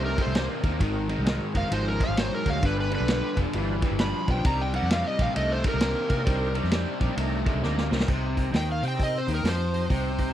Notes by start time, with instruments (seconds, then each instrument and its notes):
Already playing: fingered electric bass C2, overdriven electric guitar C3 A3, tonewheel organ D4 D#4 G4 A#4
0.06 electric slide guitar A#4
0.16 overdriven electric guitar C3 A3, tonewheel organ D4 D#4 G4 A#4, kick, ride
0.21 electric slide guitar C5
0.27 fingered electric bass C2
0.34 overdriven electric guitar C3 A#3, tonewheel organ D4 D#4 G4 C5, snare, ride
0.61 fingered electric bass D#2, overdriven electric guitar C3 A#3, tonewheel organ D4 D#4 G4 A#4, kick, ride
0.78 fingered electric bass G#1, overdriven electric guitar G#2 D#3, tonewheel organ C4 D#4 F#4 A#4, kick, ride
1.07 overdriven electric guitar G#2 D#3, tonewheel organ C4 D#4 F#4 A#4, ride
1.18 fingered electric bass C2
1.24 overdriven electric guitar G#2 D#3, tonewheel organ C4 D#4 F#4 A#4, snare, ride
1.53 fingered electric bass F#1, overdriven electric guitar G#2 D#3, tonewheel organ C4 D#4 F#4 A#4, electric slide guitar F5, kick, ride
1.69 fingered electric bass G#1, overdriven electric guitar G#2 F3, tonewheel organ C4 D#4 F#4 A#4, electric slide guitar C5, ride
1.88 electric slide guitar A#4
1.99 overdriven electric guitar G#2 F3, tonewheel organ C4 D#4 F#4 A#4, kick, ride
2.04 electric slide guitar F5
2.09 fingered electric bass G#1
2.17 overdriven electric guitar G#2 F#3, tonewheel organ C4 D#4 F#4 A#4, electric slide guitar C5, snare, ride
2.34 electric slide guitar A#4
2.45 fingered electric bass D2, overdriven electric guitar G#2 F#3, tonewheel organ C4 D#4 F#4 A#4, kick, ride
2.50 electric slide guitar F5
2.62 fingered electric bass G1, overdriven electric guitar G2 D3, tonewheel organ D4 F4 G4 B4, electric slide guitar B4, kick, ride
2.80 electric slide guitar B4
2.90 overdriven electric guitar G2 D3, tonewheel organ D4 F4 G4 B4, ride
2.95 electric slide guitar B4
3.00 fingered electric bass B1
3.07 overdriven electric guitar G2 D3, tonewheel organ D4 F4 G4 B4, snare, ride
3.35 fingered electric bass F1, overdriven electric guitar G2 D3, tonewheel organ D4 F4 G4 D5, kick, ride
3.53 fingered electric bass G1, overdriven electric guitar G2 E3, tonewheel organ D4 F4 G4 B4, ride
3.81 overdriven electric guitar G2 E3, tonewheel organ D4 F4 G4 B4, kick, ride
3.91 fingered electric bass G1
3.98 overdriven electric guitar G2 F3, tonewheel organ D4 F4 G4 B4, electric slide guitar B5, snare, ride
4.28 fingered electric bass B1, overdriven electric guitar G2 F3, tonewheel organ D4 F4 G4 B4, electric slide guitar G5, kick, ride
4.45 fingered electric bass C2, overdriven electric guitar C3 G3, tonewheel organ D4 D#4 G4 A#4, electric slide guitar A#5, kick, ride
4.61 electric slide guitar G5
4.73 overdriven electric guitar C3 G3, tonewheel organ D4 D#4 G4 A#4, electric slide guitar F#5, ride
4.82 fingered electric bass F2
4.90 overdriven electric guitar C3 G3, tonewheel organ D4 D#4 G4 A#4, electric slide guitar F5, snare, ride
5.07 electric slide guitar D#5
5.18 fingered electric bass A#1, overdriven electric guitar C3 G3, tonewheel organ D4 D#4 G4 A#4, electric slide guitar F5, kick, ride
5.35 fingered electric bass C2, overdriven electric guitar C3 A3, tonewheel organ D4 D#4 G4 A#4, electric slide guitar D#5, ride
5.52 electric slide guitar C5
5.64 overdriven electric guitar C3 A3, tonewheel organ D4 D#4 G4 A#4, kick, ride
5.68 electric slide guitar A#4
5.74 fingered electric bass C2
5.80 overdriven electric guitar C3 A#3, tonewheel organ D4 D#4 G4 C5, snare, ride
6.09 overdriven electric guitar C3 A#3, fingered electric bass C3, tonewheel organ D4 D#4 G4 A#4, kick, ride
6.25 fingered electric bass C2, overdriven electric guitar C3 G3, tonewheel organ D4 D#4 G4 C5, kick, ride
6.55 overdriven electric guitar C3 G3, tonewheel organ D4 D#4 G4 A#4, ride
6.64 fingered electric bass F2, snare
6.71 overdriven electric guitar C3 G3, tonewheel organ D4 D#4 G4 C5, snare, ride
7.00 fingered electric bass A#1, overdriven electric guitar C3 G3, tonewheel organ D4 D#4 G4 A#4, kick, ride
7.17 fingered electric bass C2, overdriven electric guitar C3 A3, tonewheel organ D4 D#4 G4 A#4, ride
7.44 overdriven electric guitar C3 A3, tonewheel organ D4 D#4 G4 A#4, kick, ride
7.54 fingered electric bass C2
7.61 fingered electric bass D2, overdriven electric guitar C3 A#3, tonewheel organ D4 D#4 G4 A#4, snare
7.78 snare
7.89 fingered electric bass C2, overdriven electric guitar C3 A#3, tonewheel organ D4 D#4 G4 C5, snare
8.00 snare
8.06 fingered electric bass C2, overdriven electric guitar C3, tonewheel organ C4 D#4 G4 C5, kick, crash
8.35 tonewheel organ C4 D#4 G4 A#4, kick, open hi-hat
8.51 fingered electric bass D#2, overdriven electric guitar D#3, tonewheel organ C4 D#4 G4 C5, snare, open hi-hat
8.56 electric slide guitar G5
8.72 electric slide guitar F5
8.81 fingered electric bass C3, tonewheel organ C4 D#4 G4 C5, overdriven electric guitar C4, open hi-hat
8.88 electric slide guitar G5
8.96 tonewheel organ C4 D#4 G4 A#4, kick, open hi-hat
9.03 electric slide guitar D#5
9.18 electric slide guitar C5
9.26 fingered electric bass D#2, overdriven electric guitar D#3, tonewheel organ C4 D#4 G4 C5, open hi-hat
9.35 electric slide guitar A#4
9.43 fingered electric bass F2, overdriven electric guitar F3, tonewheel organ C4 D#4 G4 C5, snare, open hi-hat
9.49 electric slide guitar C5
9.72 tonewheel organ C4 D#4 G4 C5, open hi-hat
9.89 fingered electric bass C2, overdriven electric guitar C3, tonewheel organ C4 D#4 G4 C5, kick, open hi-hat
10.18 tonewheel organ C4 D#4 G4 C5, kick, open hi-hat